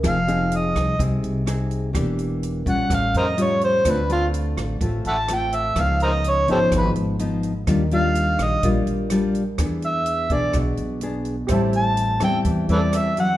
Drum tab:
HH |xxxxxxxx|xxxxxxxx|xxxxxxxx|xxxxxxxx|
SD |r--r--r-|r---r---|r--r--r-|r---r---|
BD |o---o---|o--oo---|o---o---|o---o---|

HH |xxxxxxxx|xxxxxxxx|xxxxxxxx|
SD |r--r--r-|r---r---|r--r--r-|
BD |o---o---|o--oo---|o---o---|